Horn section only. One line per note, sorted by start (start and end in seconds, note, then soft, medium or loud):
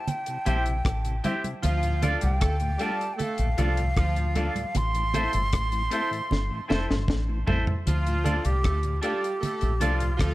1.63 2.18 F3 loud
1.63 2.18 F4 loud
2.21 2.37 G3 medium
2.21 2.37 G4 medium
2.39 2.56 A3 medium
2.39 2.56 A4 loud
2.78 3.10 G3 medium
2.78 3.10 G4 medium
3.17 3.49 A3 loud
3.17 3.49 A4 loud
3.56 3.88 F3 medium
3.56 3.88 F4 loud
3.96 4.52 F3 loud
3.96 4.52 F4 loud
7.86 8.41 F3 loud
7.86 8.42 F4 loud
8.44 8.60 G3 medium
8.44 8.60 G4 medium
8.63 8.79 A3 medium
8.63 8.79 A4 medium
9.02 9.33 G3 medium
9.02 9.34 G4 loud
9.40 9.72 A3 medium
9.40 9.72 A4 loud
9.79 10.11 F3 medium
9.79 10.11 F4 medium
10.17 10.34 F3 medium
10.17 10.34 F4 loud